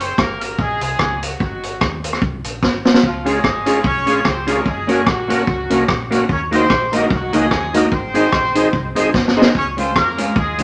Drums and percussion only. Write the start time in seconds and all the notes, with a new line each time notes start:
0.00 closed hi-hat
0.18 kick, cross-stick
0.41 closed hi-hat
0.59 kick
0.81 closed hi-hat
0.99 kick, cross-stick
1.23 closed hi-hat
1.40 kick
1.63 closed hi-hat
1.81 kick, cross-stick
2.04 closed hi-hat
2.13 cross-stick
2.22 kick
2.44 closed hi-hat
2.63 kick, snare
2.85 snare
2.94 snare
3.03 kick
3.26 closed hi-hat
3.44 kick, cross-stick
3.66 closed hi-hat
3.84 kick
4.07 closed hi-hat
4.25 kick, cross-stick
4.47 closed hi-hat
4.66 kick
4.89 closed hi-hat
5.07 kick, cross-stick
5.30 closed hi-hat
5.47 kick
5.70 closed hi-hat
5.88 kick, cross-stick
6.12 closed hi-hat
6.29 kick
6.52 closed hi-hat
6.70 kick, cross-stick
6.93 closed hi-hat
7.10 kick
7.33 closed hi-hat
7.51 kick, cross-stick
7.74 closed hi-hat
7.92 kick
8.15 closed hi-hat
8.32 kick, cross-stick
8.55 closed hi-hat
8.73 kick
8.96 closed hi-hat
9.14 kick, snare
9.28 snare
9.41 snare
9.55 kick
9.78 closed hi-hat
9.96 kick, cross-stick
10.18 closed hi-hat
10.36 kick
10.58 closed hi-hat